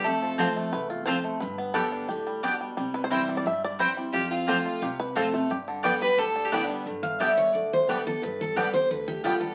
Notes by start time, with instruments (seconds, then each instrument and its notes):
0.04 upright bass F1, steel-string acoustic guitar F2, five-string banjo A3, fiddle A4
0.22 five-string banjo F3
0.38 steel-string acoustic guitar F3 A3 C4 F4, mandolin C4 F4 C5 A5, five-string banjo C5
0.56 five-string banjo A3
0.73 upright bass C2, steel-string acoustic guitar E2, five-string banjo B4
0.90 five-string banjo F4
1.06 steel-string acoustic guitar F2, mandolin C4 F4 C5 A5, five-string banjo C5
1.24 five-string banjo A3
1.40 upright bass G1, steel-string acoustic guitar G2, five-string banjo B4
1.58 five-string banjo B3
1.74 steel-string acoustic guitar D3 G3 B3 G4, mandolin B3 G4 D5 G5, five-string banjo A4
1.92 five-string banjo D4
2.09 upright bass D2, steel-string acoustic guitar A2, five-string banjo G4
2.27 five-string banjo G3
2.43 steel-string acoustic guitar B2, mandolin B3 G4 D5 G5, five-string banjo D4
2.61 five-string banjo G3
2.77 upright bass C2, steel-string acoustic guitar C3, five-string banjo G3
2.94 five-string banjo B4
3.04 five-string banjo C5
3.10 steel-string acoustic guitar E3 G3 C4 E4, mandolin C4 E4 C5 G5, five-string banjo E4
3.29 five-string banjo G3
3.37 five-string banjo D5
3.46 upright bass G1, steel-string acoustic guitar G2, five-string banjo E5
3.64 five-string banjo D5
3.79 steel-string acoustic guitar E3 G3 C4 E4, mandolin C4 E4 C5 G5, five-string banjo C5
3.96 five-string banjo G3, steel-string acoustic guitar C4 E4
4.13 upright bass F2, steel-string acoustic guitar F2, five-string banjo F4, fiddle G4
4.30 five-string banjo C4, fiddle F4
4.47 steel-string acoustic guitar F3 A3 C4 F4, mandolin C4 F4 C5 A5, five-string banjo G4
4.66 five-string banjo F4
4.82 upright bass C2, steel-string acoustic guitar C3, five-string banjo G4
5.00 five-string banjo B4
5.15 steel-string acoustic guitar F3 A3 C4 F4, mandolin C4 F4 C5 A5, five-string banjo A4
5.33 five-string banjo A3, steel-string acoustic guitar C4 F4
5.50 upright bass G2, steel-string acoustic guitar G2, five-string banjo G4
5.68 five-string banjo D3
5.83 steel-string acoustic guitar D3 G3 B3 G4, mandolin B3 G4 D5 G5, five-string banjo B4
6.01 five-string banjo G3, steel-string acoustic guitar B3 G4, fiddle B4
6.17 upright bass D2, steel-string acoustic guitar D3, five-string banjo G4, fiddle A4
6.36 five-string banjo D4
6.45 fiddle G4
6.52 steel-string acoustic guitar D3 G3 B3 G4, mandolin B3 G4 D5 G5, five-string banjo B3, fiddle E4
6.65 fiddle D4
6.70 five-string banjo G3
6.86 upright bass G1, steel-string acoustic guitar G2
7.03 steel-string acoustic guitar F5
7.20 steel-string acoustic guitar D3 G3 B3 G4 E5, five-string banjo G3 B3 D4, mandolin B3 G4 D5 G5
7.37 steel-string acoustic guitar C#5
7.54 upright bass D2, steel-string acoustic guitar D3 D5
7.73 steel-string acoustic guitar C5
7.88 steel-string acoustic guitar D3 G3 B3 G4 B4, five-string banjo G3 B3 D4, mandolin B3 G4 D5 G5
8.06 steel-string acoustic guitar B3 G4 A4
8.22 upright bass G1, steel-string acoustic guitar G2 B4
8.41 steel-string acoustic guitar A4
8.55 steel-string acoustic guitar D3 G3 B3 G4 B4, five-string banjo G3 B3 D4, mandolin B3 G4 D5 G5
8.73 steel-string acoustic guitar B3 G4 C5
8.90 upright bass D2, steel-string acoustic guitar D3 B4
9.08 steel-string acoustic guitar G4
9.24 steel-string acoustic guitar D3 G3 B3 F4 G4, five-string banjo G3 B3 D4, mandolin B3 G4 D5 G5
9.40 steel-string acoustic guitar A4